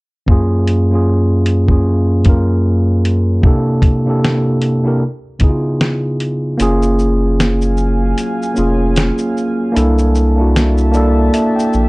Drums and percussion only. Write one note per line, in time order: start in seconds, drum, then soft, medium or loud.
0.28 kick loud
0.67 closed hi-hat medium
1.46 closed hi-hat medium
1.68 kick medium
2.25 kick medium
2.25 closed hi-hat medium
3.05 closed hi-hat medium
3.43 kick loud
3.82 kick medium
3.82 closed hi-hat medium
4.25 snare loud
4.62 closed hi-hat medium
5.40 kick medium
5.40 closed hi-hat medium
5.81 snare medium
6.20 closed hi-hat medium
6.60 closed hi-hat medium
6.60 shaker medium
6.82 shaker soft
6.99 shaker soft
7.40 snare loud
7.40 closed hi-hat medium
7.40 shaker medium
7.61 shaker soft
7.77 shaker soft
8.18 closed hi-hat medium
8.18 shaker medium
8.43 shaker soft
8.56 shaker soft
8.96 snare loud
8.96 closed hi-hat medium
8.96 shaker medium
9.18 shaker medium
9.37 shaker soft
9.76 closed hi-hat medium
9.76 shaker medium
9.98 shaker soft
10.15 shaker soft
10.56 snare loud
10.56 closed hi-hat medium
10.56 shaker medium
10.78 shaker soft
10.94 shaker soft
11.34 closed hi-hat medium
11.34 shaker medium
11.59 shaker soft
11.73 shaker soft